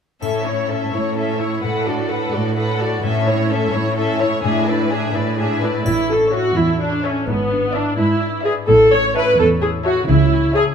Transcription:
0.21 A2 C#4 A4 E5, triangle
0.45 C#4 E4 C#5
0.69 C#4 A4 E5
0.93 A2 E4 C#5
1.16 C#4 A4 E5
1.39 E4 C#5
1.62 A2 A4 B4 F#5
1.85 D4 F#4 A4 D5
2.10 A4 B4 F#5
2.33 A2 F#4 A4 D5
2.56 A4 B4 F#5
2.78 F#4 A4 D5
3.02 A2 C#4 A4 E5
3.26 C#4 E4 C#5
3.49 C#4 A4 E5
3.73 A2 E4 C#5
3.97 C#4 A4 E5
4.19 E4 C#5
4.43 A2 D4 G#4 E5
4.66 D4 E4 B4 D5
4.90 D4 G#4 E5
5.14 A2 E4 B4 D5
5.38 D4 G#4 E5
5.62 D4 E4 B4 D5
5.86 A1 A2 E4, triangle
6.10 C#4 A4
6.32 E4 F#4 C#5 E5
6.56 E2 E4 A4
6.80 D4 C#5
7.03 C#4 A4 C#5 E5
7.27 G#1 G#2 B3
7.51 D4
7.73 D4 E4 D5 E5
7.97 G#2 E4 B4
8.20 D5
8.44 G#4 B4 D5 E5
8.68 A1 A2 A4
8.91 C#4 C#5
9.14 E4 B4 C#5 E5 A5
9.38 E2 A4 C#5
9.62 E4 G#4
9.85 F#4 C#5 E5 A5
10.08 C#2 C#3 E4
10.32 C#4
10.55 E4 G#4 C#5 E5 A5

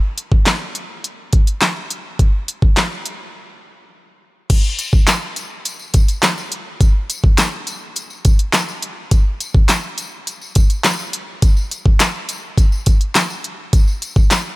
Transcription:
0.18 closed hi-hat
0.32 kick
0.46 snare, clap, closed hi-hat
0.75 closed hi-hat
1.04 closed hi-hat
1.33 kick, closed hi-hat
1.47 closed hi-hat
1.61 snare, clap, closed hi-hat
1.90 closed hi-hat
2.19 kick, closed hi-hat
2.48 closed hi-hat
2.62 kick
2.77 snare, clap, closed hi-hat
3.06 closed hi-hat
4.50 kick, closed hi-hat, crash, tambourine
4.64 tambourine
4.79 closed hi-hat, tambourine
4.93 kick, tambourine
5.07 snare, clap, closed hi-hat, tambourine
5.36 closed hi-hat, tambourine
5.65 closed hi-hat, tambourine
5.79 tambourine
5.94 kick, closed hi-hat, tambourine
6.08 closed hi-hat, tambourine
6.23 snare, clap, closed hi-hat, tambourine
6.38 tambourine
6.52 closed hi-hat
6.81 kick, closed hi-hat, tambourine
7.10 closed hi-hat, tambourine
7.24 kick
7.38 snare, clap, closed hi-hat, tambourine
7.67 closed hi-hat, tambourine
7.96 closed hi-hat, tambourine
8.10 tambourine
8.25 kick, closed hi-hat, tambourine
8.39 closed hi-hat
8.53 snare, clap, closed hi-hat, tambourine
8.68 tambourine
8.82 closed hi-hat
9.11 kick, closed hi-hat, tambourine
9.40 closed hi-hat, tambourine
9.55 kick
9.69 snare, clap, closed hi-hat, tambourine
9.98 closed hi-hat, tambourine
10.27 closed hi-hat, tambourine
10.41 tambourine
10.55 kick, closed hi-hat, tambourine
10.70 closed hi-hat, tambourine
10.84 snare, clap, closed hi-hat, tambourine
10.99 tambourine
11.13 closed hi-hat
11.42 kick, closed hi-hat, tambourine
11.57 tambourine
11.71 closed hi-hat, tambourine
11.86 kick
12.00 snare, clap, closed hi-hat, tambourine
12.29 closed hi-hat, tambourine
12.58 kick, closed hi-hat, tambourine
12.72 tambourine
12.86 kick, closed hi-hat, tambourine
13.01 closed hi-hat
13.15 snare, clap, closed hi-hat, tambourine
13.30 tambourine
13.44 closed hi-hat
13.73 kick, closed hi-hat, tambourine
13.88 tambourine
14.02 closed hi-hat, tambourine
14.16 kick, tambourine
14.31 snare, clap, closed hi-hat, tambourine

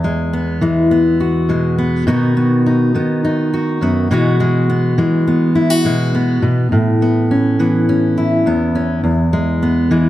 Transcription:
Already playing: E2
0.04 G#3
0.33 B3
0.61 E3 G#3
0.91 B3
1.20 F#4
1.49 B2 G#3
1.78 B3
2.07 B2 D#3 B3 D#4 F#4
2.37 B3
2.66 D#4
2.95 D#3 B3
3.25 D#4
3.54 F#4
3.81 F#2 B3
4.11 B2 E3 G#3 B3 F#4
4.40 G#3
4.70 B3
4.98 E3 G#3
5.27 B3
5.55 E4
5.70 F#4
5.85 B2 G#3
6.15 B3
6.42 B2
6.72 A2
7.02 B3
7.31 C#4
7.59 E3 B3
7.89 C#4
8.18 E4
8.46 E2 B3
8.75 C#4
9.04 E2
9.33 G#3
9.63 B3
9.91 E3 G#3

